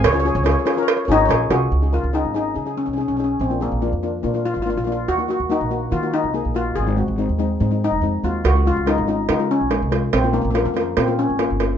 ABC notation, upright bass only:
X:1
M:4/4
L:1/16
Q:1/4=142
K:Db
V:1 name="Upright bass" clef=bass
D,,3 D,,2 z4 z A,,,2 B,,,2 C,,2 | D,,3 D,,2 A,,,3 D,3 C,,2 _C,,3 | B,,,3 B,,,2 F,,3 B,,3 A,,,2 B,,,3 | E,,3 E,,2 B,,,3 E,3 C,,2 B,,,3 |
A,,,3 A,,,2 E,,3 A,,3 F,,, F,,2 E,,2 | D,,3 D,,2 A,,,3 D,3 B,,,2 C,,3 | B,,,3 B,,,2 F,,3 B,,3 A,,,2 =G,,,3 |]